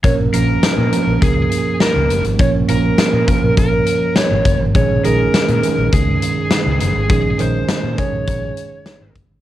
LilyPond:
<<
  \new Staff \with { instrumentName = "Lead electric guitar" } { \time 4/4 \key bes \minor \tempo 4 = 102 des''8 bes'4. aes'4 bes'8. r16 | des''8 bes'4. bes'4 des''8. r16 | des''8 bes'4. aes'4 aes'4 | aes'8 c''4 des''2 r8 | }
  \new Staff \with { instrumentName = "Tine electric piano" } { \time 4/4 \key bes \minor <f bes des' bes'>8 <f bes des' bes'>8 r8 <f bes des' bes'>4. r4 | <f bes des' des''>8 <f bes des' bes'>8 r8 <f bes des' bes'>4. r4 | <ees aes des' aes'>8 <ees aes des' aes'>8 r8 <ees aes des' bes'>4. r4 | <ees aes des' aes'>8 <ees aes des' aes'>8 r8 <ees aes des' aes'>4. r4 | }
  \new Staff \with { instrumentName = "Fingered electric bass" } { \clef bass \time 4/4 \key bes \minor bes,,8 bes,,8 r16 bes,16 r16 bes,,16 des,8 r8. des,16 ges,,16 aes,,16 | bes,,8 bes,,8 r16 bes,16 r16 bes,,16 bes,,8 r8. aes,,16 ges,,16 aes,,16 | bes,,8 bes,,8 r16 bes,16 r16 bes,,16 des,8 r8. des,16 ges,,16 aes,,16 | bes,,8 bes,,8 r16 bes,16 r16 bes,,16 bes,,8 r8. aes,,16 ges,,16 aes,,16 | }
  \new DrumStaff \with { instrumentName = "Drums" } \drummode { \time 4/4 <hh bd>8 hh8 <hh sn>8 hh8 <hh bd>8 hh8 <hh sn>8 hh16 hh16 | <hh bd>8 hh8 <hh sn>8 <hh bd>8 <hh bd>8 hh8 <hh sn>8 <hh bd>8 | <hh bd>8 hh8 <hh sn>16 hh16 hh8 <hh bd>8 hh8 <hh sn>8 hh8 | <hh bd>8 hh8 <hh sn>8 <hh bd>8 <hh bd>8 hh8 <hh sn>8 <hh bd>8 | }
>>